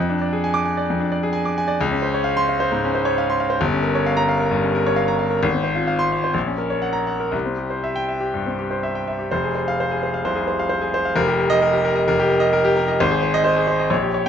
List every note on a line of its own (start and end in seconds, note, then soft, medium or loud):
0.00 0.86 F2 medium
0.09 0.28 D4 medium
0.22 0.39 D5 medium
0.33 0.51 G#4 medium
0.44 0.62 G#5 medium
0.54 0.72 D6 medium
0.65 0.84 G#5 medium
0.77 0.95 D5 medium
0.90 1.77 F2 medium
1.00 1.18 D4 medium
1.12 1.29 D5 medium
1.23 1.41 G#4 medium
1.33 1.51 G#5 medium
1.45 1.63 D6 medium
1.58 1.75 G#5 medium
1.68 1.79 D5 medium
1.81 2.68 C#2 loud
1.91 2.09 C#4 medium
2.02 2.20 C5 medium
2.14 2.32 C#5 medium
2.24 2.42 F5 medium
2.37 2.55 C6 loud
2.49 2.66 F5 medium
2.60 2.78 C5 medium
2.72 2.89 G#2 medium
2.84 3.01 C#4 medium
2.95 3.12 C5 medium
3.05 3.23 C#5 medium
3.18 3.35 F5 medium
3.30 3.46 C6 medium
3.40 3.57 F5 medium
3.50 3.61 C5 medium
3.61 4.49 G1 loud
3.72 3.90 C#4 medium
3.83 4.02 A#4 medium
3.95 4.13 C#5 medium
4.06 4.25 F5 medium
4.17 4.35 A#5 loud
4.29 4.47 F5 medium
4.40 4.58 A#4 medium
4.51 4.70 G2 medium
4.63 4.81 C#4 medium
4.75 4.93 A#4 medium
4.86 5.04 C#5 medium
4.96 5.15 F5 medium
5.08 5.27 A#5 medium
5.19 5.38 F5 medium
5.30 5.42 A#4 medium
5.43 6.32 G#1 loud
5.54 5.72 C4 medium
5.64 5.83 C5 medium
5.75 5.95 F4 medium
5.88 6.07 F5 medium
5.99 6.18 C6 medium
6.12 6.31 F5 medium
6.24 6.36 C5 medium
6.34 7.30 A#1 medium
6.47 6.66 C#4 medium
6.58 6.78 A#4 medium
6.70 6.90 C#5 medium
6.82 7.02 F#5 medium
6.93 7.14 A#5 medium
7.07 7.28 F#5 medium
7.20 7.33 A#4 medium
7.32 8.30 C2 medium
7.45 7.66 C4 medium
7.57 7.78 G4 soft
7.70 7.91 C5 medium
7.84 8.04 E5 medium
7.96 8.16 G5 medium
8.09 8.29 E5 medium
8.20 8.41 G4 medium
8.34 8.54 G2 medium
8.46 8.66 C4 medium
8.59 8.78 G4 medium
8.71 8.90 C5 medium
8.83 9.03 E5 medium
8.95 9.15 G5 medium
9.07 9.27 E5 medium
9.19 9.31 G4 medium
9.31 10.23 F1 medium
9.31 9.51 C5 medium
9.44 9.63 G#4 medium
9.55 9.74 C5 medium
9.68 9.87 F5 medium
9.80 9.98 C5 medium
9.91 10.10 G#4 medium
10.03 10.21 C5 medium
10.14 10.32 F5 medium
10.24 10.43 C2 medium
10.24 10.44 C5 medium
10.35 10.55 G#4 medium
10.48 10.66 C5 medium
10.59 10.78 F5 medium
10.69 10.89 C5 medium
10.81 11.00 G#4 medium
10.94 11.12 C5 medium
11.05 11.17 F5 medium
11.16 12.05 F1 loud
11.16 11.34 A#4 medium
11.28 11.46 G4 medium
11.40 11.58 A#4 medium
11.50 11.69 D#5 loud
11.62 11.80 A#4 medium
11.73 11.92 G4 medium
11.85 12.03 A#4 medium
11.95 12.14 D#5 medium
12.08 12.96 F1 medium
12.08 12.26 A#4 medium
12.20 12.38 G4 medium
12.30 12.49 A#4 medium
12.40 12.59 D#5 medium
12.53 12.71 A#4 medium
12.65 12.83 G4 medium
12.76 12.94 A#4 medium
12.88 12.99 D#5 medium
13.00 13.89 G#1 loud
13.00 13.18 C5 medium
13.11 13.29 G#4 medium
13.23 13.40 C5 medium
13.34 13.52 D#5 loud
13.44 13.63 C5 medium
13.56 13.75 G#4 medium
13.67 13.86 C5 medium
13.79 13.91 D#5 medium
13.90 14.29 A#1 medium
13.90 14.09 C#5 medium
14.02 14.21 G4 medium
14.14 14.29 C#5 medium